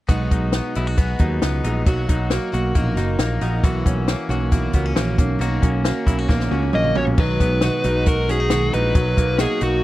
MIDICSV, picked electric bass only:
0, 0, Header, 1, 2, 480
1, 0, Start_track
1, 0, Tempo, 443131
1, 99, Time_signature, 4, 2, 24, 8
1, 10654, End_track
2, 0, Start_track
2, 0, Title_t, "Picked electric bass"
2, 0, Program_c, 0, 34
2, 94, Note_on_c, 0, 35, 88
2, 300, Note_off_c, 0, 35, 0
2, 338, Note_on_c, 0, 35, 72
2, 644, Note_off_c, 0, 35, 0
2, 829, Note_on_c, 0, 35, 79
2, 1232, Note_off_c, 0, 35, 0
2, 1295, Note_on_c, 0, 39, 73
2, 1500, Note_off_c, 0, 39, 0
2, 1540, Note_on_c, 0, 37, 71
2, 1744, Note_off_c, 0, 37, 0
2, 1774, Note_on_c, 0, 34, 79
2, 1980, Note_off_c, 0, 34, 0
2, 2024, Note_on_c, 0, 35, 89
2, 2226, Note_off_c, 0, 35, 0
2, 2267, Note_on_c, 0, 35, 83
2, 2570, Note_off_c, 0, 35, 0
2, 2745, Note_on_c, 0, 35, 72
2, 2946, Note_off_c, 0, 35, 0
2, 2985, Note_on_c, 0, 34, 74
2, 3186, Note_off_c, 0, 34, 0
2, 3212, Note_on_c, 0, 30, 73
2, 3419, Note_off_c, 0, 30, 0
2, 3450, Note_on_c, 0, 34, 82
2, 3658, Note_off_c, 0, 34, 0
2, 3698, Note_on_c, 0, 34, 79
2, 3902, Note_off_c, 0, 34, 0
2, 3939, Note_on_c, 0, 35, 92
2, 4143, Note_off_c, 0, 35, 0
2, 4178, Note_on_c, 0, 35, 76
2, 4484, Note_off_c, 0, 35, 0
2, 4647, Note_on_c, 0, 35, 85
2, 5060, Note_off_c, 0, 35, 0
2, 5132, Note_on_c, 0, 37, 83
2, 5339, Note_off_c, 0, 37, 0
2, 5367, Note_on_c, 0, 34, 72
2, 5576, Note_off_c, 0, 34, 0
2, 5616, Note_on_c, 0, 35, 83
2, 5821, Note_off_c, 0, 35, 0
2, 5838, Note_on_c, 0, 35, 97
2, 6051, Note_off_c, 0, 35, 0
2, 6094, Note_on_c, 0, 35, 81
2, 6402, Note_off_c, 0, 35, 0
2, 6570, Note_on_c, 0, 35, 87
2, 6777, Note_off_c, 0, 35, 0
2, 6814, Note_on_c, 0, 34, 79
2, 7020, Note_off_c, 0, 34, 0
2, 7050, Note_on_c, 0, 37, 74
2, 7257, Note_off_c, 0, 37, 0
2, 7301, Note_on_c, 0, 34, 66
2, 7504, Note_off_c, 0, 34, 0
2, 7538, Note_on_c, 0, 34, 77
2, 7742, Note_off_c, 0, 34, 0
2, 7777, Note_on_c, 0, 35, 96
2, 7981, Note_off_c, 0, 35, 0
2, 8017, Note_on_c, 0, 35, 82
2, 8323, Note_off_c, 0, 35, 0
2, 8497, Note_on_c, 0, 35, 86
2, 9414, Note_off_c, 0, 35, 0
2, 9467, Note_on_c, 0, 34, 84
2, 9666, Note_off_c, 0, 34, 0
2, 9697, Note_on_c, 0, 35, 104
2, 9901, Note_off_c, 0, 35, 0
2, 9937, Note_on_c, 0, 35, 84
2, 10243, Note_off_c, 0, 35, 0
2, 10417, Note_on_c, 0, 35, 86
2, 10654, Note_off_c, 0, 35, 0
2, 10654, End_track
0, 0, End_of_file